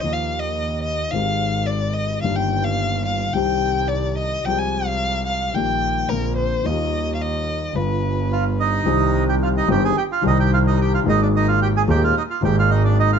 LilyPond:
<<
  \new Staff \with { instrumentName = "Violin" } { \time 4/4 \key ees \major \tempo 4 = 109 ees''16 f''8 ees''8. ees''8 f''4 d''8 ees''8 | f''16 g''8 f''8. f''8 g''4 d''8 ees''8 | g''16 aes''8 f''8. f''8 g''4 bes'8 c''8 | ees''8.~ ees''32 f''32 ees''4 b'4. r8 |
\key c \minor r1 | r1 | }
  \new Staff \with { instrumentName = "Bandoneon" } { \time 4/4 \key ees \major r1 | r1 | r1 | r2. <f' f''>8 <ees' ees''>8~ |
\key c \minor <ees' ees''>8. <g' g''>16 <f' f''>16 <ees' ees''>16 <g' g''>16 <aes' aes''>16 <g' g''>16 <f' f''>16 <ees' ees''>16 <g' g''>16 <f' f''>16 <ees' ees''>16 <g' g''>16 <f' f''>16 | <ees' ees''>16 <d' d''>16 <ees' ees''>16 <f' f''>16 <g' g''>16 <aes' aes''>16 <g' g''>16 <f' f''>16 <ees' ees''>16 <f' f''>16 <g' g''>16 <f' f''>16 <ees' ees''>16 <d' d''>16 <ees' ees''>16 <f' f''>16 | }
  \new Staff \with { instrumentName = "Grand piano" } { \clef bass \time 4/4 \key ees \major <ees, ees f bes f'>2 <aes,, aes, ees aes c' g'>2 | <g,, g, ees bes d' g'>2 <c, c ees g c' g'>2 | <c, c f aes c' g'>2 <bes,, bes, ees g bes g'>4 <bes,, bes, d bes c' f'>4 | <ees, ees g bes f'>2 <g,, g, d g b f'>2 |
\key c \minor <c, c ees g c' g'>4. <g,, g, ees g c' g'>8 r8 <c, c ees g c' g'>4. | <aes,, aes, ees aes bes aes'>4. <ees,, ees, ees aes bes aes'>8 r8 <aes,, aes, ees aes bes aes'>4. | }
  \new Staff \with { instrumentName = "Double bass" } { \clef bass \time 4/4 \key ees \major ees,2 aes,,2 | g,,2 c,2 | c,2 bes,,4 bes,,4 | ees,2 g,,2 |
\key c \minor c,4. g,,8 r8 c,4. | aes,,4. ees,8 r8 aes,,4. | }
>>